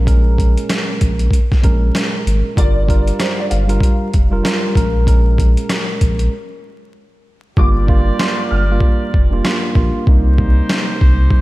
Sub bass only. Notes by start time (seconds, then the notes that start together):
Already playing: A#1
1.02 A#1
1.64 A#1
2.26 G#1
2.57 G1
3.51 G1
4.14 F1
4.76 A#1
6.02 A#1
7.57 G1
8.51 G1
9.14 F1
9.76 A#1
10.07 C2
11.02 C2